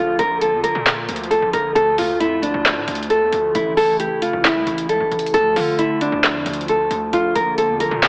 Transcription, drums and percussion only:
0.19 closed hi-hat medium
0.41 closed hi-hat medium
0.64 closed hi-hat medium
0.86 snare loud
0.86 clap loud
0.86 closed hi-hat medium
1.09 closed hi-hat medium
1.16 closed hi-hat medium
1.24 closed hi-hat soft
1.31 closed hi-hat medium
1.53 closed hi-hat medium
1.76 closed hi-hat medium
1.98 open hi-hat medium
2.20 closed hi-hat medium
2.43 closed hi-hat medium
2.65 snare loud
2.65 clap loud
2.65 closed hi-hat medium
2.88 closed hi-hat medium
2.95 closed hi-hat medium
3.03 closed hi-hat medium
3.10 closed hi-hat medium
3.32 closed hi-hat medium
3.55 closed hi-hat medium
3.77 open hi-hat medium
4.00 closed hi-hat medium
4.22 closed hi-hat medium
4.44 snare loud
4.44 clap loud
4.44 closed hi-hat medium
4.67 closed hi-hat medium
4.78 closed hi-hat medium
4.89 closed hi-hat medium
5.12 closed hi-hat soft
5.19 closed hi-hat medium
5.26 closed hi-hat medium
5.34 closed hi-hat medium
5.56 open hi-hat medium
5.79 closed hi-hat medium
6.01 closed hi-hat medium
6.23 snare loud
6.23 clap loud
6.23 closed hi-hat medium
6.46 closed hi-hat medium
6.53 closed hi-hat medium
6.61 closed hi-hat soft
6.68 closed hi-hat medium
6.91 closed hi-hat medium
7.13 closed hi-hat medium
7.36 closed hi-hat medium
7.58 closed hi-hat medium
7.80 closed hi-hat medium
8.03 snare loud
8.03 clap loud
8.03 closed hi-hat medium

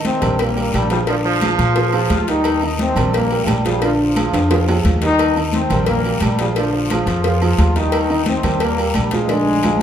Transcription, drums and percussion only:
0.05 cowbell medium
0.05 high conga loud
0.05 short guiro medium
0.22 cowbell medium
0.22 high conga soft
0.22 low conga medium
0.22 low agogo loud
0.22 short guiro medium
0.39 cowbell loud
0.39 high conga soft
0.39 low agogo medium
0.39 long guiro medium
0.56 high conga soft
0.56 low agogo medium
0.73 cowbell medium
0.73 high conga medium
0.73 low timbale medium
0.73 low agogo loud
0.73 short guiro medium
0.90 cowbell medium
0.90 short guiro medium
1.07 cowbell loud
1.07 high conga soft
1.07 low agogo medium
1.07 long guiro medium
1.25 high conga soft
1.41 cowbell medium
1.41 high conga loud
1.41 low agogo loud
1.41 short guiro medium
1.58 cowbell medium
1.58 high conga soft
1.58 low agogo medium
1.58 short guiro medium
1.76 cowbell loud
1.76 high conga soft
1.76 long guiro medium
1.93 high conga soft
1.93 low agogo loud
2.10 cowbell medium
2.10 high conga loud
2.10 low timbale medium
2.10 low agogo medium
2.10 short guiro medium
2.27 cowbell medium
2.27 short guiro medium
2.44 cowbell medium
2.44 high conga soft
2.44 low agogo loud
2.44 long guiro medium
2.61 high conga soft
2.61 low agogo medium
2.79 cowbell medium
2.79 high conga loud
2.79 short guiro medium
2.96 cowbell medium
2.96 high conga soft
2.96 low conga medium
2.96 low agogo loud
2.96 short guiro medium
3.13 cowbell loud
3.13 high conga soft
3.13 low agogo medium
3.13 long guiro medium
3.31 high conga soft
3.31 low agogo medium
3.47 cowbell medium
3.47 high conga medium
3.47 low timbale medium
3.47 low agogo loud
3.47 short guiro medium
3.65 cowbell medium
3.65 short guiro medium
3.82 cowbell loud
3.82 high conga soft
3.82 low agogo loud
3.82 long guiro medium
4.00 high conga soft
4.16 cowbell medium
4.16 high conga loud
4.16 low agogo loud
4.16 short guiro medium
4.34 cowbell medium
4.34 high conga soft
4.34 high timbale medium
4.34 low agogo medium
4.34 short guiro medium
4.50 cowbell loud
4.50 high conga soft
4.50 high timbale loud
4.50 long guiro medium
4.68 high conga soft
4.68 low timbale loud
4.68 low agogo loud
4.85 cowbell medium
4.85 high conga medium
4.85 low agogo medium
4.85 short guiro medium
5.01 cowbell medium
5.01 low timbale medium
5.01 short guiro medium
5.19 cowbell loud
5.19 high conga soft
5.19 low agogo loud
5.19 long guiro medium
5.36 high conga soft
5.36 low agogo loud
5.53 cowbell medium
5.53 high conga loud
5.53 short guiro medium
5.70 cowbell medium
5.70 high conga soft
5.70 low conga medium
5.70 low agogo loud
5.70 short guiro medium
5.86 cowbell loud
5.86 high conga soft
5.86 low conga medium
5.86 low agogo medium
5.86 long guiro medium
6.05 high conga soft
6.05 low agogo medium
6.21 cowbell medium
6.21 high conga loud
6.21 low timbale medium
6.21 low agogo loud
6.21 short guiro medium
6.39 cowbell medium
6.39 short guiro medium
6.56 cowbell loud
6.56 high conga soft
6.56 low agogo medium
6.56 long guiro medium
6.73 high conga soft
6.90 cowbell medium
6.90 high conga loud
6.90 low agogo loud
6.90 short guiro medium
7.07 cowbell medium
7.07 high conga soft
7.07 low agogo medium
7.07 short guiro medium
7.24 cowbell loud
7.24 high conga soft
7.24 long guiro medium
7.42 high conga soft
7.42 low agogo loud
7.58 cowbell medium
7.58 high conga medium
7.58 low timbale medium
7.58 low agogo medium
7.58 short guiro medium
7.76 cowbell medium
7.76 short guiro medium
7.92 cowbell loud
7.92 high conga soft
7.92 low agogo loud
7.92 long guiro medium
8.09 high conga soft
8.09 low agogo medium
8.26 cowbell medium
8.26 high conga loud
8.26 short guiro medium
8.43 cowbell medium
8.43 high conga soft
8.43 low conga medium
8.43 low agogo loud
8.43 short guiro medium
8.60 cowbell loud
8.60 high conga soft
8.60 low agogo loud
8.60 long guiro medium
8.79 low agogo medium
8.94 cowbell medium
8.94 high conga loud
8.94 low agogo loud
8.94 short guiro medium
9.11 cowbell medium
9.11 high conga medium
9.11 short guiro medium
9.29 cowbell loud
9.29 high conga medium
9.29 low agogo medium
9.29 long guiro medium
9.53 high conga medium
9.63 cowbell medium
9.63 high conga medium
9.63 low agogo loud
9.63 short guiro medium
9.76 high conga medium

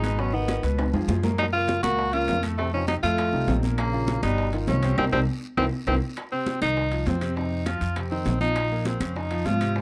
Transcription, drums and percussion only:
0.04 high bongo soft
0.04 high conga medium
0.04 high timbale medium
0.04 short guiro medium
0.04 claves medium
0.19 high bongo medium
0.19 high conga soft
0.19 long guiro medium
0.33 high conga soft
0.48 high bongo medium
0.48 high conga medium
0.48 high timbale medium
0.48 low timbale medium
0.48 short guiro medium
0.48 claves medium
0.63 high bongo soft
0.63 high conga soft
0.63 high timbale medium
0.63 short guiro medium
0.78 high bongo medium
0.78 high conga medium
0.78 high timbale loud
0.78 long guiro medium
0.78 claves medium
0.94 high bongo soft
0.94 low conga medium
0.94 high timbale medium
1.08 high bongo soft
1.08 low bongo medium
1.08 low conga medium
1.08 low timbale medium
1.08 short guiro medium
1.23 high bongo soft
1.23 low conga medium
1.23 low timbale medium
1.23 short guiro medium
1.38 high bongo medium
1.38 high conga soft
1.38 high timbale medium
1.38 long guiro medium
1.38 claves medium
1.54 high conga soft
1.68 high bongo medium
1.68 high conga medium
1.68 high timbale medium
1.68 low timbale medium
1.68 short guiro medium
1.83 high bongo soft
1.83 high conga loud
1.83 high timbale medium
1.83 short guiro medium
1.83 claves medium
1.98 high bongo medium
1.98 high conga soft
1.98 long guiro medium
2.13 high bongo soft
2.13 high conga soft
2.13 high timbale medium
2.28 high bongo soft
2.28 low bongo medium
2.28 high conga medium
2.28 high timbale medium
2.28 low timbale medium
2.28 short guiro medium
2.43 high bongo soft
2.43 high conga medium
2.43 high timbale medium
2.43 short guiro medium
2.43 claves medium
2.58 high bongo medium
2.58 high conga soft
2.58 long guiro medium
2.73 high conga soft
2.88 high bongo medium
2.88 high conga loud
2.88 high timbale medium
2.88 low timbale medium
2.88 short guiro medium
2.88 claves medium
3.03 high bongo soft
3.03 high conga soft
3.03 high timbale medium
3.03 short guiro medium
3.18 high bongo medium
3.18 high conga soft
3.18 high timbale medium
3.18 long guiro medium
3.18 claves medium
3.33 high bongo soft
3.33 high conga soft
3.48 high bongo soft
3.48 low bongo medium
3.48 high conga medium
3.48 high timbale medium
3.48 low timbale medium
3.48 short guiro medium
3.63 high bongo soft
3.63 high conga medium
3.63 short guiro medium
3.78 high bongo medium
3.78 high conga soft
3.78 high timbale medium
3.78 long guiro medium
3.78 claves medium
3.93 high conga soft
4.08 high bongo medium
4.08 high conga medium
4.08 high timbale medium
4.08 low timbale medium
4.08 short guiro medium
4.23 high bongo soft
4.23 high conga loud
4.23 high timbale medium
4.23 short guiro medium
4.23 claves medium
4.38 high bongo medium
4.38 high conga soft
4.38 long guiro medium
4.53 high bongo soft
4.53 high conga soft
4.53 high timbale medium
4.67 high bongo soft
4.67 low bongo medium
4.67 high conga medium
4.67 high timbale medium
4.67 low timbale medium
4.67 short guiro medium
4.83 high bongo soft
4.83 high conga medium
4.83 high timbale loud
4.83 short guiro medium
4.83 claves medium
4.98 high bongo loud
4.98 high conga loud
4.98 high timbale loud
4.98 long guiro loud
4.98 claves loud
5.12 high bongo loud
5.12 high conga loud
5.12 high timbale medium
5.12 long guiro medium
5.12 claves loud
5.57 high bongo medium
5.57 high conga loud
5.57 high timbale loud
5.57 long guiro loud
5.57 claves medium
5.87 high bongo medium
5.87 high conga medium
5.87 high timbale medium
5.87 long guiro medium
5.87 claves medium
6.17 high bongo medium
6.17 high conga soft
6.17 high timbale medium
6.17 long guiro medium
6.17 claves medium
6.32 high conga soft
6.46 high bongo medium
6.46 high conga medium
6.46 high timbale medium
6.46 low timbale medium
6.46 short guiro medium
6.62 high bongo soft
6.62 high conga loud
6.62 high timbale medium
6.62 short guiro medium
6.62 claves medium
6.77 high bongo medium
6.77 high conga soft
6.77 long guiro medium
6.92 high bongo soft
6.92 high conga soft
6.92 high timbale medium
7.06 high bongo soft
7.06 low bongo medium
7.06 high conga medium
7.06 high timbale medium
7.06 low timbale medium
7.06 short guiro medium
7.21 high bongo soft
7.21 high conga medium
7.21 high timbale medium
7.21 short guiro medium
7.21 claves medium
7.36 high bongo medium
7.36 high conga soft
7.36 long guiro medium
7.52 high conga soft
7.66 high bongo medium
7.66 high conga medium
7.66 high timbale medium
7.66 low timbale medium
7.66 short guiro medium
7.66 claves medium
7.81 high bongo soft
7.81 high conga soft
7.81 high timbale medium
7.81 short guiro medium
7.96 high bongo medium
7.96 high conga soft
7.96 high timbale medium
7.96 long guiro medium
7.96 claves medium
8.11 high bongo soft
8.11 high conga soft
8.26 high bongo soft
8.26 low bongo medium
8.26 high conga medium
8.26 high timbale medium
8.26 low timbale medium
8.26 short guiro medium
8.41 high bongo soft
8.41 high conga medium
8.41 short guiro medium
8.56 high bongo medium
8.56 high conga soft
8.56 high timbale medium
8.56 long guiro medium
8.56 claves medium
8.71 high conga soft
8.85 high bongo medium
8.85 high conga medium
8.85 high timbale medium
8.85 low timbale medium
8.85 short guiro medium
9.01 high bongo soft
9.01 high conga loud
9.01 high timbale medium
9.01 short guiro medium
9.01 claves medium
9.16 high bongo medium
9.16 high conga soft
9.16 long guiro medium
9.31 high bongo soft
9.31 high conga soft
9.31 high timbale medium
9.45 high bongo soft
9.45 low bongo medium
9.45 high conga medium
9.45 high timbale medium
9.45 low timbale medium
9.45 short guiro medium
9.61 high bongo soft
9.61 high timbale medium
9.61 short guiro medium
9.61 claves medium
9.76 high bongo medium
9.76 high conga soft
9.76 long guiro medium

